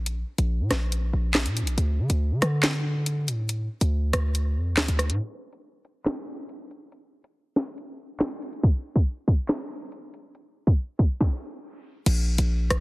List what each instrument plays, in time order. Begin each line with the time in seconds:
Already playing: 808-style bass A#1
0.06 closed hi-hat
0.38 808-style bass A#1, closed hi-hat
0.60 808-style bass A#2
0.71 808-style bass A#1, cross-stick, snare, closed hi-hat
0.92 closed hi-hat
1.13 808-style bass A#1
1.34 snare, clap
1.45 808-style bass A#2, closed hi-hat
1.57 closed hi-hat
1.62 808-style bass A#1
1.67 closed hi-hat
1.78 808-style bass D2, closed hi-hat
1.99 808-style bass D3
2.10 808-style bass D2, closed hi-hat
2.31 808-style bass D3
2.42 808-style bass D3, cross-stick, closed hi-hat
2.63 snare, clap, closed hi-hat
3.06 closed hi-hat
3.28 808-style bass A2, closed hi-hat
3.49 closed hi-hat
3.81 808-style bass D2, closed hi-hat
4.13 808-style bass D2, cross-stick, closed hi-hat
4.35 closed hi-hat
4.56 808-style bass F2
4.72 808-style bass D2
4.77 snare, clap
4.88 808-style bass D2, closed hi-hat
4.99 cross-stick, closed hi-hat
5.10 808-style bass A2, closed hi-hat
5.20 closed hi-hat
5.53 closed hi-hat
5.85 closed hi-hat
6.06 snare, clap, closed hi-hat
6.49 closed hi-hat
6.71 closed hi-hat
6.92 closed hi-hat
7.24 closed hi-hat
7.56 snare, closed hi-hat
7.78 closed hi-hat
8.20 snare, clap
8.31 closed hi-hat
8.42 closed hi-hat
8.53 closed hi-hat
8.63 kick, closed hi-hat
8.96 kick, closed hi-hat
9.28 kick, closed hi-hat
9.48 snare, clap, closed hi-hat
9.92 closed hi-hat
10.14 closed hi-hat
10.35 closed hi-hat
10.67 kick, closed hi-hat
10.99 kick, closed hi-hat
11.21 kick, snare
12.06 808-style bass A#1, closed hi-hat, crash
12.38 808-style bass A#1, closed hi-hat
12.70 808-style bass A#1, cross-stick, closed hi-hat